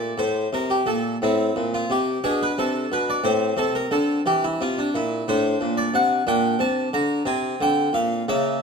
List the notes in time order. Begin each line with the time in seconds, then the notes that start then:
Already playing: A#2 A3 D5
0.18 A2 C5
0.53 C3 A#4
0.70 G4
0.86 A#2 A4
1.22 A2 C4 E4
1.56 A#2
1.74 F4
1.90 C3 G4
2.24 B2 D4 G#4
2.43 B4
2.58 C3 A4
2.92 B2 B4
3.10 D5
3.24 A2 C4 C5
3.57 C3 A4
3.75 A#4
3.91 D3 A4
4.26 E3 G4
4.44 E4
4.61 C3 F4
4.79 D4
4.95 A#2 E4
5.28 A2 D4 C5
5.61 A#2
5.77 D5
5.94 C3 F#5
6.27 A#2 D4 G5
6.59 C3 A5
6.93 D3 A#5
7.25 C3 C4 G#5
7.61 D3 G5
7.93 A#2 F5
8.28 C#3 A#3 E5